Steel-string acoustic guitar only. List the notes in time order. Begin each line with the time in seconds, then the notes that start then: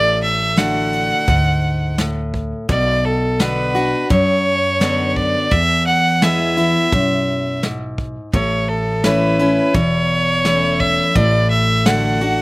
Already playing: A2
0.56 D3 A3 D4 F#4
1.28 G#2
1.98 A2
2.69 B2
3.39 D3 B3 D4 F#4
3.75 D4 F#4
4.10 F#2
4.80 D3 B3 D4 F#4
5.51 E2
6.22 E3 G#3 B3 E4
6.57 B3 E4
6.93 F#2
7.63 G#2
8.34 A2
9.04 E3 A3 C#4 E4
9.39 C#4 E4
9.74 E2
10.45 E3 A3 C#4 E4
11.16 A2
11.86 D3 A3 D4 F#4
12.21 D4 F#4